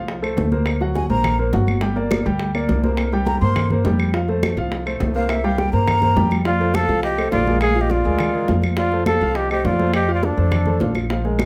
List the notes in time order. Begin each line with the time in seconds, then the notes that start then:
Already playing: C2 F3 F4 F5
0.08 high bongo, high conga
0.22 A3 A4 C5, high conga, claves
0.37 D2, high bongo, low bongo, high conga
0.52 A#3 A#4 C5, high bongo, high conga
0.66 high bongo, high conga, claves
0.81 F#3 F#4 F#5, high bongo, high conga
0.95 G#5, high bongo, high conga
1.09 A#1 A#3 A#4 C5 A#5, high bongo, high conga
1.24 high bongo, high conga, low conga, claves
1.39 A#3 A#4 C5, high conga
1.53 G1 F#3 F#4 F#5, high bongo, low bongo, high conga
1.67 high bongo, high conga, claves
1.81 G3 G4 G5, high bongo, high conga
1.96 A#3 A#4 D5, high bongo, high conga
2.11 high bongo, high conga, claves
2.26 D2 G3 G4 G5, high bongo
2.40 high bongo, high conga
2.55 A#3 A#4 D5, high conga, claves
2.69 C2, high bongo, low bongo, high conga
2.83 A#3 A#4 C5, high bongo, high conga
2.97 high bongo, high conga, claves
3.12 G3 G4 G5, high bongo, high conga
3.26 A#5, high bongo, high conga
3.40 G2 A#3 A#4 C5 C6, high bongo, high conga
3.56 high bongo, high conga, low conga, claves
3.70 A#3 A#4 C5, high conga, low conga
3.85 F2 G3 G4 G5, high bongo, low bongo, high conga
3.99 high bongo, claves
4.14 F3 F4 F5, high bongo, high conga
4.28 A3 A4 C5, high bongo, high conga
4.43 high bongo, high conga, claves
4.57 C2 F3 F4 F5, high bongo
4.72 high bongo, high conga
4.86 A3 A4 C5, high conga, claves
5.00 C2, high bongo, low bongo, high conga
5.15 A#3 A#4 C5 F5, high bongo
5.29 E5, high bongo, high conga, claves
5.44 G3 G4 F5 G5, high bongo, high conga
5.58 G5, high bongo, high conga
5.73 G2 A#3 A#4 C5 A#5, high bongo, high conga
5.87 high bongo, high conga, low conga, claves
6.02 A#3 A#4 C5, high conga, low conga
6.16 F2 G3 G4 G5, high bongo, low bongo, high conga
6.31 high bongo, high conga, claves
6.45 F3 F4 D5 F5, high bongo, high conga
6.60 A3 A4 C5, high bongo, high conga
6.74 A4 F5, high bongo, high conga, claves
6.89 C2 F3 F4 F5, high bongo
7.03 G4 D#5, high bongo, high conga
7.18 A3 A4 C5, high conga, claves
7.31 A#1 F4 D5, high bongo, low bongo, high conga
7.46 G#3 G#4 A#4, high bongo, high conga
7.61 G#4 F5, high bongo, high conga, claves
7.75 F3 F4 F5, high bongo, high conga
7.81 G4 D#5
7.90 F4 D5, high bongo, high conga
8.04 D2 G#3 G#4 A#4, high bongo, high conga
8.19 high bongo, high conga, low conga, claves
8.34 G#3 G#4 A#4, high conga
8.48 F2 F3 F4 F5, high bongo, low bongo, high conga
8.62 high bongo, high conga, claves
8.77 F3 F4 D5 F5, high bongo, high conga
8.92 A3 A4 C5, high bongo, high conga
9.06 A4 F5, high bongo, high conga, claves
9.21 C2 F3 F4 F5, high bongo
9.35 G4 D#5, high bongo, high conga
9.50 A3 G4 A4 C5 D#5, high conga, claves
9.64 F2 F4 D5, high bongo, low bongo, high conga
9.79 A3 A4 C5, high bongo, high conga
9.94 G4 D#5, high bongo, high conga, claves
10.08 F3 F4 F5, high bongo, high conga
10.14 F4 D5
10.23 D4 A4, high bongo, high conga
10.37 F2 A3 A4 C5, high bongo, high conga
10.51 high bongo, high conga, low conga, claves
10.66 A3 A4 C5, high conga, low conga
10.80 A#1 F3 F4 F5, high bongo, low bongo, high conga
10.95 high bongo, high conga, claves
11.10 F3 F4 F5, high bongo, high conga
11.25 G#3 G#4 A#4, high bongo, high conga
11.39 high bongo, high conga, claves